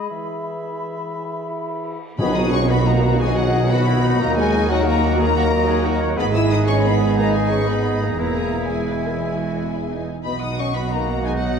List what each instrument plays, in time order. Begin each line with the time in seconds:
Already playing: clarinet G#4, flute section B5
0.10 french horn section E3, oboe E5
2.17 double bass section B1, timpani B2, cello section B2, trombone section D#3 F#3, french horn section B3, viola section D#4 D#5, clarinet F#4, trumpet section F#4, oboe G#4, flute section D#5, violin section B5, tam-tam
2.32 french horn section D#4, viola section F#4 F#5, violin section D#6
2.38 violin section D#6
2.51 french horn section C#4, viola section D#4 D#5, violin section C#6
2.68 trombone section D#3 F#3, french horn section B3, trumpet section F#4, viola section F#4 F#5, oboe F#4, violin section B5
2.84 french horn section A#3, viola section D#4 D#5, violin section A#5
3.03 viola section F#4 F#5
3.19 french horn section G#3, viola section D#4 D#5, oboe G#4, violin section G#5
3.36 french horn section F#3, viola section F#4 F#5, violin section F#5
3.53 viola section D#4 D#5
3.69 trombone section D#3 F#3, french horn section B3, viola section F#4 F#5, trumpet section F#4, oboe F#4, violin section B5
3.86 viola section D#4 D#5, oboe E4
4.03 oboe D#4, viola section F#4 F#5
4.20 cello section D#2, double bass section D#2, trombone section D#3 F#3, french horn section A#3, viola section D#4 D#5, trumpet section A#4, violin section A#5
4.37 french horn section G#3, viola section F#4 F#5, violin section G#5
4.54 viola section D#4 D#5
4.69 trombone section D#3 F#3, french horn section F#3, oboe F#4, viola section F#4 F#5, trumpet section A#4, violin section F#5
4.85 french horn section A#3, viola section D#4 D#5, violin section A#5
5.03 viola section F#4 F#5
5.17 trombone section D#3 F#3, french horn section A#3, viola section D#4 D#5, oboe G#4, trumpet section A#4, violin section A#5
5.22 violin section A#5
5.36 oboe F#4, viola section F#4 F#5
5.52 viola section D#4 D#5, oboe A#4
5.68 viola section F#4 F#5, oboe G#4
5.85 viola section D#4 D#5, oboe F#4
6.01 viola section F#4 F#5, oboe C#5
6.17 double bass section G#1, cello section G#2, trombone section D#3 G#3, french horn section B3, clarinet G#4, trumpet section G#4, oboe B4, viola section B4 D#5, flute section D#5, violin section B5
6.33 french horn section E4, viola section G#4 B4, violin section E6
6.50 french horn section D#4, viola section B4 D#5, violin section D#6
6.66 french horn section C#4, oboe G#4, viola section G#4 B4, violin section C#6
6.82 french horn section B3, viola section B4 D#5, violin section B5
7.01 viola section G#4 B4
7.16 french horn section A#3, oboe D#4, viola section B4 D#5, violin section A#5
7.33 french horn section G#3, viola section G#4 B4, violin section G#5
7.50 french horn section C#4, viola section B4 D#5, violin section C#6
7.66 trombone section D#3 G#3, french horn section B3, viola section G#4 B4, trumpet section G#4, violin section B5
7.84 viola section B4 D#5
8.01 french horn section A#3, viola section G#4 B4, violin section A#5
8.17 double bass section E1, cello section E2, trombone section E3 G#3, french horn section A#3, oboe E4, trumpet section E4, viola section B4 E5, flute section E5, violin section A#5
8.35 viola section G#4 G#5
8.53 viola section B4 E5
8.68 trombone section E3 G#3, french horn section G#3, trumpet section E4, viola section G#4, violin section G#5
8.87 viola section B4
9.05 viola section A#4
9.21 viola section G#4
9.38 viola section F#4
9.72 viola section E4
9.89 viola section D#4
10.23 double bass section B1, cello section B2, trombone section D#3 F#3, french horn section B3, viola section D#4 D#5, trumpet section F#4, clarinet F#4, flute section D#5, violin section B5
10.40 french horn section D#4, viola section F#4 F#5, violin section D#6
10.57 french horn section C#4, viola section D#4 D#5, violin section C#6
10.74 french horn section B3, viola section F#4 F#5, violin section B5
10.91 french horn section A#3, viola section D#4 D#5, violin section A#5
11.09 viola section F#4 F#5
11.23 french horn section G#3, oboe D#4, viola section D#4 D#5, violin section G#5
11.41 french horn section F#3, viola section F#4 F#5, violin section F#5